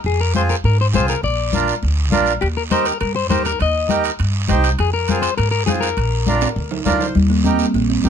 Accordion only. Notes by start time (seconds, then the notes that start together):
0.35 C4 F4 G#4
0.93 C4 F4 G#4
1.53 D4 F4 A#4
2.11 D4 F4 A#4
2.71 D#4 G4 A#4
3.30 D#4 G4 A#4
3.89 D#4 G4 A#4
4.49 D#4 G4 C5
5.10 C4 F4 G#4
5.68 C4 F4 G#4
6.27 D4 F4 A#4
6.85 D4 F4 A#4 F5
7.01 C5
7.45 D#4 G4 A#4
8.04 D#4 G4 A#4